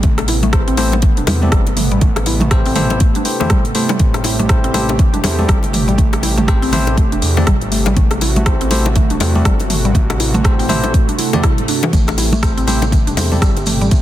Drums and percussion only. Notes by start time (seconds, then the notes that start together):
0.03 kick, closed hi-hat, muted conga, low conga
0.18 cross-stick, closed hi-hat, high bongo
0.28 open hi-hat, low bongo
0.43 closed hi-hat, muted conga, high conga
0.53 kick, cross-stick, closed hi-hat
0.68 closed hi-hat
0.77 open hi-hat, low bongo
0.92 closed hi-hat, low bongo, muted conga
1.02 kick, closed hi-hat, low bongo, low conga
1.17 closed hi-hat, high conga
1.27 open hi-hat, high bongo, muted conga, high conga
1.43 high conga
1.52 kick, cross-stick, closed hi-hat
1.67 closed hi-hat, low bongo, muted conga
1.77 mid tom, open hi-hat, high conga
1.91 closed hi-hat
2.01 kick, closed hi-hat, muted conga, low conga
2.16 cross-stick, closed hi-hat, high bongo
2.26 open hi-hat, low bongo
2.40 closed hi-hat, mid tom, muted conga, high conga
2.51 kick, cross-stick, closed hi-hat
2.66 open hi-hat
2.75 mid tom, open hi-hat, low bongo, high conga, low conga
2.90 closed hi-hat, low bongo, muted conga
3.00 kick, closed hi-hat
3.15 closed hi-hat, high conga
3.25 open hi-hat, muted conga
3.40 high bongo, low conga
3.50 kick, cross-stick, closed hi-hat, mid tom, high conga
3.65 closed hi-hat, muted conga
3.75 open hi-hat
3.89 closed hi-hat, high bongo, low bongo
3.99 kick, closed hi-hat, muted conga, low conga
4.14 cross-stick, closed hi-hat, high bongo
4.24 open hi-hat, low bongo
4.39 closed hi-hat, muted conga, high conga
4.49 kick, cross-stick, closed hi-hat
4.64 closed hi-hat
4.74 open hi-hat, low bongo, high conga
4.89 closed hi-hat, low bongo, muted conga
4.99 kick, closed hi-hat, low bongo, low conga
5.14 closed hi-hat, high conga
5.24 open hi-hat, high bongo, muted conga, high conga
5.39 high conga
5.49 kick, cross-stick, closed hi-hat
5.63 closed hi-hat, low bongo, muted conga
5.74 mid tom, open hi-hat
5.89 closed hi-hat
5.98 kick, closed hi-hat, muted conga, low conga
6.13 cross-stick, closed hi-hat, high bongo
6.23 open hi-hat, low bongo
6.38 closed hi-hat, mid tom, muted conga, high conga
6.48 kick, cross-stick, closed hi-hat
6.63 open hi-hat
6.72 mid tom, open hi-hat, low bongo, high conga, low conga
6.87 closed hi-hat, low bongo, muted conga
6.98 kick, closed hi-hat
7.12 closed hi-hat
7.22 open hi-hat, muted conga
7.37 high bongo, low conga
7.47 kick, cross-stick, closed hi-hat, mid tom, high conga
7.61 closed hi-hat, muted conga
7.72 open hi-hat
7.86 closed hi-hat, high bongo, low bongo
7.97 kick, closed hi-hat, muted conga, low conga
8.11 cross-stick, closed hi-hat, high bongo
8.21 open hi-hat, low bongo
8.36 closed hi-hat, muted conga, high conga
8.46 kick, cross-stick, closed hi-hat
8.61 closed hi-hat
8.71 open hi-hat, low bongo, high conga
8.86 closed hi-hat, low bongo, muted conga
8.96 kick, closed hi-hat, low bongo, low conga
9.10 closed hi-hat, high conga
9.20 open hi-hat, high bongo, muted conga, high conga
9.35 high conga
9.45 kick, cross-stick, closed hi-hat
9.60 closed hi-hat, low bongo, muted conga
9.70 mid tom, open hi-hat
9.85 closed hi-hat
9.95 kick, closed hi-hat, muted conga, low conga
10.10 cross-stick, closed hi-hat, high bongo
10.20 open hi-hat, low bongo
10.34 closed hi-hat, mid tom, muted conga, high conga
10.45 kick, cross-stick, closed hi-hat
10.60 open hi-hat
10.68 mid tom, open hi-hat, low bongo, high conga, low conga
10.84 closed hi-hat, low bongo, muted conga
10.94 kick, closed hi-hat
11.08 closed hi-hat, high conga
11.19 open hi-hat, muted conga
11.33 closed hi-hat, high bongo, low conga
11.43 kick, cross-stick, closed hi-hat, mid tom, high conga
11.58 closed hi-hat, muted conga
11.68 open hi-hat
11.83 closed hi-hat, high bongo, low bongo
11.93 kick, closed hi-hat, muted conga, low conga, maracas
12.07 cross-stick, closed hi-hat, high bongo, maracas
12.18 open hi-hat, low bongo, maracas
12.32 closed hi-hat, muted conga, high conga, maracas
12.43 kick, cross-stick, closed hi-hat, maracas
12.57 closed hi-hat, maracas
12.67 open hi-hat, low bongo, high conga, maracas
12.82 closed hi-hat, low bongo, muted conga, maracas
12.92 kick, closed hi-hat, low bongo, low conga, maracas
13.07 closed hi-hat, high conga, maracas
13.17 open hi-hat, high bongo, muted conga, high conga, maracas
13.32 high conga, maracas
13.42 kick, cross-stick, closed hi-hat, maracas
13.57 closed hi-hat, low bongo, muted conga, maracas
13.66 mid tom, open hi-hat, maracas
13.81 closed hi-hat, maracas
13.91 kick, closed hi-hat, muted conga, low conga, maracas